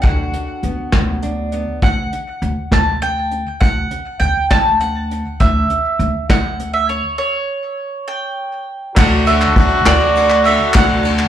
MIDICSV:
0, 0, Header, 1, 8, 480
1, 0, Start_track
1, 0, Key_signature, 2, "major"
1, 0, Tempo, 594648
1, 31, Time_signature, 6, 3, 24, 8
1, 9105, End_track
2, 0, Start_track
2, 0, Title_t, "Mandolin"
2, 0, Program_c, 0, 25
2, 14, Note_on_c, 0, 78, 75
2, 953, Note_off_c, 0, 78, 0
2, 1474, Note_on_c, 0, 78, 90
2, 2200, Note_off_c, 0, 78, 0
2, 2203, Note_on_c, 0, 81, 85
2, 2434, Note_off_c, 0, 81, 0
2, 2437, Note_on_c, 0, 79, 87
2, 2907, Note_off_c, 0, 79, 0
2, 2910, Note_on_c, 0, 78, 89
2, 3384, Note_off_c, 0, 78, 0
2, 3387, Note_on_c, 0, 79, 82
2, 3633, Note_off_c, 0, 79, 0
2, 3636, Note_on_c, 0, 81, 84
2, 3876, Note_off_c, 0, 81, 0
2, 3879, Note_on_c, 0, 78, 80
2, 4327, Note_off_c, 0, 78, 0
2, 4359, Note_on_c, 0, 76, 89
2, 5047, Note_off_c, 0, 76, 0
2, 5083, Note_on_c, 0, 78, 84
2, 5433, Note_off_c, 0, 78, 0
2, 5436, Note_on_c, 0, 76, 67
2, 5549, Note_off_c, 0, 76, 0
2, 5563, Note_on_c, 0, 73, 69
2, 5787, Note_off_c, 0, 73, 0
2, 5797, Note_on_c, 0, 73, 77
2, 6520, Note_on_c, 0, 79, 73
2, 6963, Note_off_c, 0, 73, 0
2, 7234, Note_off_c, 0, 79, 0
2, 7237, Note_on_c, 0, 78, 93
2, 7481, Note_on_c, 0, 76, 78
2, 7483, Note_off_c, 0, 78, 0
2, 7925, Note_off_c, 0, 76, 0
2, 7961, Note_on_c, 0, 74, 85
2, 8403, Note_off_c, 0, 74, 0
2, 8438, Note_on_c, 0, 76, 76
2, 8657, Note_off_c, 0, 76, 0
2, 8684, Note_on_c, 0, 78, 101
2, 9105, Note_off_c, 0, 78, 0
2, 9105, End_track
3, 0, Start_track
3, 0, Title_t, "Trombone"
3, 0, Program_c, 1, 57
3, 7230, Note_on_c, 1, 66, 127
3, 9105, Note_off_c, 1, 66, 0
3, 9105, End_track
4, 0, Start_track
4, 0, Title_t, "Twelve-string acoustic guitar"
4, 0, Program_c, 2, 25
4, 7243, Note_on_c, 2, 50, 76
4, 7248, Note_on_c, 2, 54, 76
4, 7249, Note_on_c, 2, 62, 74
4, 7251, Note_on_c, 2, 57, 80
4, 7256, Note_on_c, 2, 66, 80
4, 7465, Note_off_c, 2, 66, 0
4, 7473, Note_off_c, 2, 62, 0
4, 7475, Note_on_c, 2, 66, 59
4, 7479, Note_off_c, 2, 50, 0
4, 7481, Note_off_c, 2, 54, 0
4, 7483, Note_off_c, 2, 57, 0
4, 7483, Note_on_c, 2, 62, 51
4, 7493, Note_on_c, 2, 57, 44
4, 7714, Note_off_c, 2, 66, 0
4, 7715, Note_off_c, 2, 57, 0
4, 7718, Note_off_c, 2, 62, 0
4, 7718, Note_on_c, 2, 54, 57
4, 7725, Note_on_c, 2, 57, 57
4, 7727, Note_on_c, 2, 62, 59
4, 7733, Note_on_c, 2, 66, 61
4, 7949, Note_off_c, 2, 66, 0
4, 7952, Note_off_c, 2, 57, 0
4, 7952, Note_off_c, 2, 62, 0
4, 7956, Note_off_c, 2, 54, 0
4, 7958, Note_on_c, 2, 66, 69
4, 7962, Note_on_c, 2, 57, 59
4, 7962, Note_on_c, 2, 62, 65
4, 7966, Note_on_c, 2, 54, 55
4, 7968, Note_on_c, 2, 50, 54
4, 8188, Note_off_c, 2, 54, 0
4, 8188, Note_off_c, 2, 57, 0
4, 8195, Note_off_c, 2, 66, 0
4, 8197, Note_off_c, 2, 62, 0
4, 8198, Note_on_c, 2, 54, 64
4, 8198, Note_on_c, 2, 57, 60
4, 8200, Note_off_c, 2, 50, 0
4, 8208, Note_on_c, 2, 62, 65
4, 8213, Note_on_c, 2, 66, 60
4, 8432, Note_off_c, 2, 66, 0
4, 8434, Note_off_c, 2, 54, 0
4, 8435, Note_off_c, 2, 57, 0
4, 8437, Note_off_c, 2, 62, 0
4, 8442, Note_on_c, 2, 66, 51
4, 8446, Note_on_c, 2, 62, 46
4, 8451, Note_on_c, 2, 57, 43
4, 8674, Note_on_c, 2, 50, 76
4, 8675, Note_off_c, 2, 57, 0
4, 8676, Note_off_c, 2, 62, 0
4, 8676, Note_off_c, 2, 66, 0
4, 8681, Note_on_c, 2, 54, 79
4, 8685, Note_on_c, 2, 57, 80
4, 8686, Note_on_c, 2, 62, 89
4, 8690, Note_on_c, 2, 66, 85
4, 8896, Note_off_c, 2, 66, 0
4, 8906, Note_on_c, 2, 66, 61
4, 8907, Note_off_c, 2, 62, 0
4, 8912, Note_off_c, 2, 50, 0
4, 8914, Note_off_c, 2, 57, 0
4, 8915, Note_off_c, 2, 54, 0
4, 8917, Note_on_c, 2, 62, 53
4, 8924, Note_on_c, 2, 57, 44
4, 9105, Note_off_c, 2, 57, 0
4, 9105, Note_off_c, 2, 62, 0
4, 9105, Note_off_c, 2, 66, 0
4, 9105, End_track
5, 0, Start_track
5, 0, Title_t, "Steel-string acoustic guitar"
5, 0, Program_c, 3, 25
5, 0, Note_on_c, 3, 54, 52
5, 30, Note_on_c, 3, 50, 62
5, 36, Note_on_c, 3, 66, 60
5, 512, Note_on_c, 3, 59, 44
5, 743, Note_off_c, 3, 54, 0
5, 746, Note_on_c, 3, 54, 47
5, 992, Note_on_c, 3, 62, 48
5, 1227, Note_off_c, 3, 59, 0
5, 1237, Note_on_c, 3, 59, 46
5, 1443, Note_off_c, 3, 54, 0
5, 1445, Note_off_c, 3, 62, 0
5, 1446, Note_off_c, 3, 50, 0
5, 1447, Note_off_c, 3, 59, 0
5, 2921, Note_off_c, 3, 66, 0
5, 9105, End_track
6, 0, Start_track
6, 0, Title_t, "Upright piano"
6, 0, Program_c, 4, 0
6, 7224, Note_on_c, 4, 54, 65
6, 7227, Note_on_c, 4, 57, 62
6, 7234, Note_on_c, 4, 38, 63
6, 7235, Note_on_c, 4, 50, 62
6, 7238, Note_on_c, 4, 62, 66
6, 7244, Note_on_c, 4, 69, 55
6, 7251, Note_on_c, 4, 74, 74
6, 7372, Control_c, 4, 64, 127
6, 8638, Note_off_c, 4, 38, 0
6, 8638, Note_off_c, 4, 50, 0
6, 8675, Note_on_c, 4, 38, 67
6, 8675, Note_on_c, 4, 50, 64
6, 9105, Note_off_c, 4, 38, 0
6, 9105, Note_off_c, 4, 50, 0
6, 9105, Note_off_c, 4, 54, 0
6, 9105, Note_off_c, 4, 57, 0
6, 9105, Note_off_c, 4, 62, 0
6, 9105, Note_off_c, 4, 69, 0
6, 9105, Note_off_c, 4, 74, 0
6, 9105, End_track
7, 0, Start_track
7, 0, Title_t, "Upright bass"
7, 0, Program_c, 5, 32
7, 32, Note_on_c, 5, 38, 85
7, 221, Note_off_c, 5, 38, 0
7, 508, Note_on_c, 5, 38, 72
7, 605, Note_off_c, 5, 38, 0
7, 748, Note_on_c, 5, 38, 71
7, 1318, Note_off_c, 5, 38, 0
7, 1474, Note_on_c, 5, 38, 85
7, 1664, Note_off_c, 5, 38, 0
7, 1952, Note_on_c, 5, 38, 72
7, 2048, Note_off_c, 5, 38, 0
7, 2190, Note_on_c, 5, 38, 68
7, 2760, Note_off_c, 5, 38, 0
7, 2918, Note_on_c, 5, 38, 84
7, 3107, Note_off_c, 5, 38, 0
7, 3391, Note_on_c, 5, 38, 78
7, 3489, Note_off_c, 5, 38, 0
7, 3642, Note_on_c, 5, 38, 72
7, 4208, Note_off_c, 5, 38, 0
7, 4363, Note_on_c, 5, 38, 94
7, 4550, Note_off_c, 5, 38, 0
7, 4838, Note_on_c, 5, 38, 78
7, 4933, Note_off_c, 5, 38, 0
7, 5084, Note_on_c, 5, 38, 71
7, 5648, Note_off_c, 5, 38, 0
7, 7240, Note_on_c, 5, 38, 105
7, 7615, Note_off_c, 5, 38, 0
7, 7719, Note_on_c, 5, 38, 92
7, 7905, Note_off_c, 5, 38, 0
7, 7955, Note_on_c, 5, 38, 91
7, 8518, Note_off_c, 5, 38, 0
7, 8679, Note_on_c, 5, 38, 99
7, 9051, Note_off_c, 5, 38, 0
7, 9105, End_track
8, 0, Start_track
8, 0, Title_t, "Drums"
8, 24, Note_on_c, 9, 42, 63
8, 30, Note_on_c, 9, 36, 88
8, 105, Note_off_c, 9, 42, 0
8, 110, Note_off_c, 9, 36, 0
8, 271, Note_on_c, 9, 42, 58
8, 352, Note_off_c, 9, 42, 0
8, 509, Note_on_c, 9, 42, 59
8, 590, Note_off_c, 9, 42, 0
8, 746, Note_on_c, 9, 38, 95
8, 746, Note_on_c, 9, 42, 73
8, 750, Note_on_c, 9, 36, 65
8, 826, Note_off_c, 9, 38, 0
8, 826, Note_off_c, 9, 42, 0
8, 831, Note_off_c, 9, 36, 0
8, 989, Note_on_c, 9, 42, 61
8, 1070, Note_off_c, 9, 42, 0
8, 1227, Note_on_c, 9, 42, 57
8, 1308, Note_off_c, 9, 42, 0
8, 1470, Note_on_c, 9, 42, 64
8, 1472, Note_on_c, 9, 36, 78
8, 1551, Note_off_c, 9, 42, 0
8, 1553, Note_off_c, 9, 36, 0
8, 1716, Note_on_c, 9, 42, 55
8, 1797, Note_off_c, 9, 42, 0
8, 1956, Note_on_c, 9, 42, 59
8, 2036, Note_off_c, 9, 42, 0
8, 2194, Note_on_c, 9, 36, 73
8, 2196, Note_on_c, 9, 38, 96
8, 2196, Note_on_c, 9, 42, 72
8, 2275, Note_off_c, 9, 36, 0
8, 2277, Note_off_c, 9, 38, 0
8, 2277, Note_off_c, 9, 42, 0
8, 2440, Note_on_c, 9, 42, 54
8, 2521, Note_off_c, 9, 42, 0
8, 2675, Note_on_c, 9, 42, 55
8, 2756, Note_off_c, 9, 42, 0
8, 2918, Note_on_c, 9, 36, 94
8, 2923, Note_on_c, 9, 42, 64
8, 2999, Note_off_c, 9, 36, 0
8, 3004, Note_off_c, 9, 42, 0
8, 3156, Note_on_c, 9, 42, 55
8, 3237, Note_off_c, 9, 42, 0
8, 3401, Note_on_c, 9, 42, 54
8, 3482, Note_off_c, 9, 42, 0
8, 3638, Note_on_c, 9, 38, 86
8, 3638, Note_on_c, 9, 42, 69
8, 3639, Note_on_c, 9, 36, 66
8, 3719, Note_off_c, 9, 38, 0
8, 3719, Note_off_c, 9, 42, 0
8, 3720, Note_off_c, 9, 36, 0
8, 3882, Note_on_c, 9, 42, 49
8, 3962, Note_off_c, 9, 42, 0
8, 4127, Note_on_c, 9, 42, 52
8, 4208, Note_off_c, 9, 42, 0
8, 4362, Note_on_c, 9, 36, 83
8, 4365, Note_on_c, 9, 42, 69
8, 4443, Note_off_c, 9, 36, 0
8, 4445, Note_off_c, 9, 42, 0
8, 4601, Note_on_c, 9, 42, 58
8, 4682, Note_off_c, 9, 42, 0
8, 4842, Note_on_c, 9, 42, 59
8, 4923, Note_off_c, 9, 42, 0
8, 5082, Note_on_c, 9, 36, 73
8, 5082, Note_on_c, 9, 38, 101
8, 5082, Note_on_c, 9, 42, 78
8, 5163, Note_off_c, 9, 36, 0
8, 5163, Note_off_c, 9, 38, 0
8, 5163, Note_off_c, 9, 42, 0
8, 5325, Note_on_c, 9, 42, 60
8, 5406, Note_off_c, 9, 42, 0
8, 5563, Note_on_c, 9, 42, 52
8, 5644, Note_off_c, 9, 42, 0
8, 7238, Note_on_c, 9, 49, 101
8, 7240, Note_on_c, 9, 36, 101
8, 7240, Note_on_c, 9, 39, 99
8, 7319, Note_off_c, 9, 49, 0
8, 7320, Note_off_c, 9, 36, 0
8, 7321, Note_off_c, 9, 39, 0
8, 7482, Note_on_c, 9, 51, 61
8, 7562, Note_off_c, 9, 51, 0
8, 7599, Note_on_c, 9, 39, 74
8, 7680, Note_off_c, 9, 39, 0
8, 7719, Note_on_c, 9, 36, 79
8, 7723, Note_on_c, 9, 51, 65
8, 7799, Note_off_c, 9, 36, 0
8, 7803, Note_off_c, 9, 51, 0
8, 7959, Note_on_c, 9, 39, 87
8, 7960, Note_on_c, 9, 38, 122
8, 7960, Note_on_c, 9, 51, 86
8, 8040, Note_off_c, 9, 39, 0
8, 8041, Note_off_c, 9, 38, 0
8, 8041, Note_off_c, 9, 51, 0
8, 8079, Note_on_c, 9, 39, 27
8, 8160, Note_off_c, 9, 39, 0
8, 8204, Note_on_c, 9, 51, 68
8, 8285, Note_off_c, 9, 51, 0
8, 8314, Note_on_c, 9, 39, 72
8, 8395, Note_off_c, 9, 39, 0
8, 8434, Note_on_c, 9, 39, 27
8, 8444, Note_on_c, 9, 51, 68
8, 8514, Note_off_c, 9, 39, 0
8, 8525, Note_off_c, 9, 51, 0
8, 8666, Note_on_c, 9, 39, 99
8, 8678, Note_on_c, 9, 36, 107
8, 8679, Note_on_c, 9, 51, 78
8, 8747, Note_off_c, 9, 39, 0
8, 8759, Note_off_c, 9, 36, 0
8, 8760, Note_off_c, 9, 51, 0
8, 8917, Note_on_c, 9, 51, 71
8, 8997, Note_off_c, 9, 51, 0
8, 9031, Note_on_c, 9, 39, 74
8, 9105, Note_off_c, 9, 39, 0
8, 9105, End_track
0, 0, End_of_file